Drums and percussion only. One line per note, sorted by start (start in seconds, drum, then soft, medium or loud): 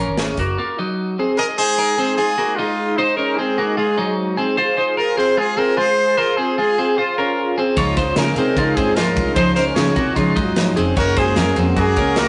0.17 snare loud
0.17 closed hi-hat medium
0.37 kick medium
0.37 closed hi-hat medium
7.77 kick loud
7.77 ride medium
7.97 kick loud
7.97 snare soft
7.97 ride medium
8.16 snare loud
8.16 ride medium
8.36 ride medium
8.57 kick medium
8.57 ride medium
8.77 kick medium
8.77 ride medium
8.96 snare loud
8.96 ride medium
9.16 kick medium
9.16 ride medium
9.36 kick loud
9.36 ride medium
9.57 snare soft
9.57 ride medium
9.76 snare loud
9.76 ride medium
9.96 kick medium
9.96 ride medium
10.16 kick medium
10.16 ride medium
10.36 kick loud
10.36 ride medium
10.56 snare loud
10.56 ride medium
10.77 ride medium
10.97 kick loud
10.97 ride medium
11.17 kick loud
11.17 snare soft
11.17 ride medium
11.36 snare loud
11.36 ride medium
11.56 ride medium
11.77 kick medium
11.77 ride medium
11.96 kick loud
11.96 ride medium
12.16 snare loud
12.16 ride medium